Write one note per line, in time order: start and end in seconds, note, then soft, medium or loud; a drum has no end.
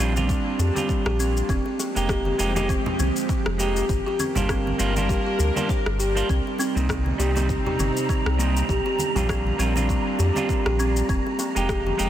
0.00 0.37 A#1 medium
0.00 0.13 G3 medium
0.00 1.46 G3 medium
0.00 1.47 A#3 medium
0.00 0.14 C4 medium
0.00 0.15 C4 medium
0.00 0.14 D4 medium
0.00 1.47 D4 medium
0.00 0.14 F4 loud
0.16 0.72 G3 medium
0.16 0.72 C4 medium
0.16 0.72 D4 medium
0.16 0.73 F4 medium
0.16 high conga medium
0.16 shaker soft
0.29 0.58 A#3 medium
0.29 kick loud
0.29 shaker soft
0.59 0.71 F2 medium
0.59 0.74 G4 medium
0.59 high bongo medium
0.59 shaker medium
0.74 1.47 G3 medium
0.74 1.47 C4 medium
0.74 1.48 D4 medium
0.74 1.49 F4 loud
0.74 1.04 G4 medium
0.74 high conga medium
0.74 shaker soft
0.89 kick loud
0.89 shaker soft
1.05 1.42 A#1 medium
1.05 1.18 G4 loud
1.05 cross-stick medium
1.05 high bongo soft
1.19 1.48 C4 medium
1.19 shaker medium
1.37 shaker soft
1.49 1.61 F1 loud
1.49 3.87 F3 medium
1.49 3.87 G#3 medium
1.49 3.87 C4 medium
1.49 1.65 C4 medium
1.49 6.25 G4 medium
1.49 kick loud
1.49 shaker soft
1.66 high bongo soft
1.79 2.08 A#3 medium
1.79 high bongo soft
1.79 shaker medium
1.96 2.32 F1 medium
1.96 2.36 G#3 medium
1.96 2.36 A#3 medium
1.96 2.36 D#4 medium
1.96 2.37 G4 medium
1.96 shaker soft
2.09 2.25 G4 medium
2.09 kick loud
2.09 cross-stick medium
2.09 shaker soft
2.25 2.55 G4 medium
2.25 high conga medium
2.38 2.77 F1 medium
2.38 2.52 G#3 medium
2.38 2.52 A#3 medium
2.38 2.52 D#4 medium
2.38 2.53 G4 medium
2.38 shaker medium
2.55 2.69 G#3 medium
2.55 2.69 A#3 medium
2.55 2.70 D#4 medium
2.55 2.69 G4 loud
2.55 2.70 G4 medium
2.55 high conga medium
2.55 shaker soft
2.69 2.98 C4 loud
2.69 kick loud
2.69 shaker soft
2.86 low conga medium
2.99 3.11 C2 medium
2.99 3.15 C4 medium
2.99 high conga medium
2.99 shaker medium
3.16 shaker soft
3.29 3.58 A#3 medium
3.29 kick loud
3.29 shaker soft
3.46 3.83 F1 medium
3.46 cross-stick medium
3.58 3.84 G#3 medium
3.58 3.84 A#3 medium
3.58 3.85 D#4 medium
3.58 3.75 G4 medium
3.58 3.85 G4 medium
3.58 shaker medium
3.76 3.90 G4 medium
3.76 shaker soft
3.89 4.01 G1 loud
3.89 11.06 G3 medium
3.89 6.27 D4 medium
3.89 6.27 A#4 medium
3.89 kick loud
3.89 shaker soft
4.06 4.19 G4 medium
4.06 high bongo soft
4.19 4.48 C4 loud
4.19 high bongo soft
4.19 high conga medium
4.19 shaker medium
4.35 4.73 G1 medium
4.35 4.76 G3 medium
4.35 4.76 A#3 medium
4.35 4.76 D4 medium
4.35 4.77 F4 medium
4.35 low conga medium
4.35 shaker soft
4.49 4.66 C4 medium
4.49 kick loud
4.49 cross-stick medium
4.49 shaker soft
4.67 high conga medium
4.78 5.17 G1 medium
4.78 4.93 G3 loud
4.78 4.94 A#3 medium
4.78 5.08 A#3 medium
4.78 4.94 D4 medium
4.78 4.94 F4 loud
4.78 shaker medium
4.96 5.52 G3 medium
4.96 5.52 A#3 medium
4.96 5.52 D4 medium
4.96 5.53 F4 medium
4.96 high conga medium
4.96 shaker soft
5.09 5.25 G4 medium
5.09 kick loud
5.09 shaker soft
5.27 5.38 G4 medium
5.39 5.51 D2 medium
5.39 high bongo soft
5.39 shaker medium
5.55 5.69 G3 medium
5.55 5.69 A#3 medium
5.55 5.70 D4 medium
5.55 5.70 F4 loud
5.55 5.68 A#4 medium
5.55 high conga medium
5.55 shaker soft
5.69 5.85 C5 medium
5.69 kick loud
5.69 shaker soft
5.86 6.23 G1 medium
5.86 cross-stick medium
5.86 high bongo soft
6.00 6.09 G4 medium
6.00 shaker medium
6.15 6.27 G3 medium
6.15 6.27 A#3 medium
6.15 6.28 D4 medium
6.15 6.28 F4 medium
6.15 shaker soft
6.29 6.41 C2 loud
6.29 8.67 C3 medium
6.29 8.67 C4 medium
6.29 6.58 C4 medium
6.29 8.67 D#4 medium
6.29 12.10 A#5 medium
6.29 kick medium
6.29 shaker soft
6.47 high bongo soft
6.59 6.75 C4 loud
6.59 high bongo soft
6.59 shaker medium
6.75 7.12 C2 medium
6.75 7.16 G3 medium
6.75 7.16 A#3 medium
6.75 7.16 C4 medium
6.75 7.17 D#4 medium
6.75 shaker soft
6.89 7.18 A#3 medium
6.89 kick loud
6.89 cross-stick medium
6.89 shaker soft
7.06 high conga medium
7.18 7.57 C2 medium
7.18 7.32 G3 medium
7.18 7.32 A#3 medium
7.18 7.32 C4 medium
7.18 7.33 D#4 loud
7.18 7.35 G4 medium
7.18 shaker medium
7.35 7.49 G3 medium
7.35 7.49 A#3 medium
7.35 7.50 C4 medium
7.35 7.50 D#4 medium
7.35 7.65 G4 medium
7.35 high conga medium
7.35 shaker soft
7.49 kick loud
7.49 shaker soft
7.66 7.79 G4 loud
7.66 low conga medium
7.79 7.91 G1 medium
7.79 8.08 C4 medium
7.79 high conga medium
7.79 shaker medium
7.97 shaker soft
8.09 8.25 C4 medium
8.09 kick loud
8.09 shaker soft
8.26 8.62 C2 medium
8.26 cross-stick medium
8.38 8.64 G3 medium
8.38 8.64 A#3 medium
8.38 8.68 A#3 medium
8.38 8.65 C4 medium
8.38 8.65 D#4 medium
8.38 shaker medium
8.57 shaker soft
8.69 8.81 A#1 loud
8.69 11.07 A#3 medium
8.69 11.07 D4 medium
8.69 8.84 G4 medium
8.69 kick medium
8.69 shaker soft
8.86 9.14 G4 medium
8.86 high bongo soft
8.99 high bongo soft
8.99 high conga medium
8.99 shaker medium
9.15 9.52 A#1 medium
9.15 9.56 G3 medium
9.15 9.56 C4 medium
9.15 9.56 D4 medium
9.15 9.57 F4 medium
9.15 9.28 G4 medium
9.15 low conga medium
9.15 shaker soft
9.29 9.58 C4 loud
9.29 kick loud
9.29 cross-stick medium
9.29 shaker soft
9.47 high conga medium
9.58 9.97 A#1 medium
9.58 9.73 G3 loud
9.58 9.75 C4 medium
9.58 9.74 C4 medium
9.58 9.74 D4 medium
9.58 9.74 F4 loud
9.58 shaker medium
9.75 10.32 G3 medium
9.75 10.32 C4 medium
9.75 10.32 D4 medium
9.75 10.33 F4 medium
9.75 high conga medium
9.75 shaker soft
9.89 10.18 A#3 medium
9.89 kick medium
9.89 shaker soft
10.19 10.31 F2 medium
10.19 10.34 G4 medium
10.19 high bongo soft
10.19 shaker medium
10.34 11.06 G3 medium
10.34 11.07 C4 medium
10.34 11.08 D4 medium
10.34 10.65 G4 medium
10.34 high conga medium
10.34 shaker soft
10.38 11.08 F4 medium
10.49 kick loud
10.49 shaker soft
10.66 11.02 A#1 medium
10.66 10.79 G4 loud
10.66 cross-stick medium
10.66 high bongo soft
10.79 11.08 C4 loud
10.79 shaker medium
10.96 shaker soft
11.09 11.21 F1 medium
11.09 12.10 F3 medium
11.09 12.10 G#3 medium
11.09 11.25 C4 medium
11.09 12.10 C4 medium
11.09 12.10 G4 medium
11.09 kick medium
11.09 shaker soft
11.27 high bongo soft
11.39 11.68 A#3 medium
11.39 high bongo medium
11.39 shaker medium
11.55 11.92 F1 medium
11.55 11.96 G#3 medium
11.55 11.96 A#3 medium
11.55 11.96 D#4 medium
11.55 11.97 G4 medium
11.55 shaker soft
11.69 11.84 G4 medium
11.69 kick loud
11.69 cross-stick medium
11.69 shaker soft
11.86 12.10 G4 medium
11.86 high conga medium
11.98 12.10 F1 medium
11.98 12.10 G#3 medium
11.98 12.10 A#3 medium
11.98 12.10 D#4 medium
11.98 12.10 G4 loud
11.98 shaker medium